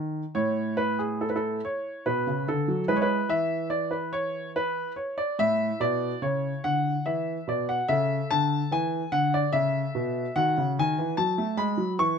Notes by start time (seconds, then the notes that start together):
Already playing: D#3
0.34 A2 E4 C#5
0.77 B4
0.99 G#4
1.21 A4
1.29 B4
1.36 A4
1.65 C#5
2.06 B2 B4
2.27 C#3
2.48 D3 A4
2.68 F#3
2.88 G#3 E4 B4
2.96 C#5
3.02 B4
3.29 E3 E5
3.70 D5
3.91 B4
4.13 C#5
4.56 B4
4.96 C#5
5.18 D5
5.39 A2 E4 E5
5.80 B2 D5
6.22 C#3 C#5
6.64 D3 F#5
7.06 E3 E5
7.47 B2 D5
7.69 F#5
7.88 C#3 A4 E5
8.30 D3 A5
8.71 E3 G#5
9.12 D3 F#5
9.34 D5
9.53 C#3 E5
9.95 B2
10.36 D#3 F#4 F#5
10.58 C#3
10.79 D#3 G#5
10.98 E3
11.17 F#3 A5
11.38 A3
11.57 G#3 B5
11.77 F#3
11.99 E3 C#6